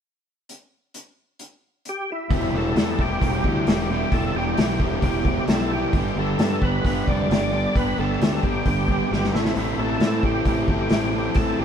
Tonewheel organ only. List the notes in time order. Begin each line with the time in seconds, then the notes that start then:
1.89 G4
2.12 E4
2.58 A4
3.02 G4
3.48 G4
3.92 G4
4.14 A4
4.36 G4
5.50 A4
5.72 G4
6.19 A4
6.63 B4
6.87 B4
7.08 D5
7.53 D5
7.77 B4
7.99 A4
8.44 G4
9.12 G4
9.33 E4
9.79 A4
10.24 G4
10.68 G4
11.13 G4
11.36 A4
11.59 G4